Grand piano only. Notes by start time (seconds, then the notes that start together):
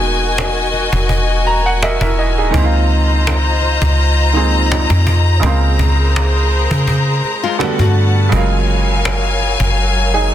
Already playing: D#3 G#3 A#3 B3 D#4 F#4 G#4
1.47 A#5
1.66 F#5
1.83 A#4 D#5 E5
2.02 E4 A#4 E5
2.18 D#5
2.38 D#4 G#4
2.51 D#3 G#3 A#3
2.56 C4 E4
2.64 F4
4.33 D#3 G#3 A#3 C4 G#4
5.40 C#3 G#3
5.44 A#3 C4 F4
7.59 D3 G3 A3 B3 F#4
8.29 C#3 F#3 G#3
8.35 A#3 F4
10.14 D#4 G#4